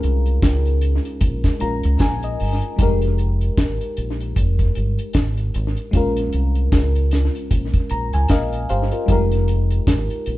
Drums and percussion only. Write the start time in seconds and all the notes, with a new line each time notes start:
0.03 closed hi-hat
0.26 closed hi-hat
0.42 kick, snare, closed hi-hat
0.66 closed hi-hat
0.81 closed hi-hat
1.05 closed hi-hat
1.21 kick, closed hi-hat
1.44 kick, snare, closed hi-hat
1.60 closed hi-hat
1.83 closed hi-hat
1.99 kick, snare, closed hi-hat
2.23 closed hi-hat
2.40 open hi-hat
2.62 closed hi-hat
2.79 kick, closed hi-hat
3.02 closed hi-hat
3.18 closed hi-hat
3.41 closed hi-hat
3.57 kick, snare, closed hi-hat
3.81 closed hi-hat
3.97 closed hi-hat
4.21 closed hi-hat
4.36 kick, closed hi-hat
4.59 kick, closed hi-hat
4.75 closed hi-hat
4.98 closed hi-hat
5.13 kick, snare, closed hi-hat
5.37 closed hi-hat
5.54 closed hi-hat
5.77 closed hi-hat
5.93 kick, closed hi-hat
6.17 closed hi-hat
6.33 closed hi-hat
6.55 closed hi-hat
6.72 kick, snare, closed hi-hat
6.95 closed hi-hat
7.11 snare, closed hi-hat
7.35 closed hi-hat
7.51 kick, closed hi-hat
7.74 kick, closed hi-hat
7.90 closed hi-hat
8.13 closed hi-hat
8.28 kick, snare, closed hi-hat
8.53 closed hi-hat
8.69 closed hi-hat
8.91 closed hi-hat
9.08 kick, closed hi-hat
9.32 closed hi-hat
9.48 closed hi-hat
9.71 closed hi-hat
9.87 kick, snare, closed hi-hat
10.10 closed hi-hat
10.26 closed hi-hat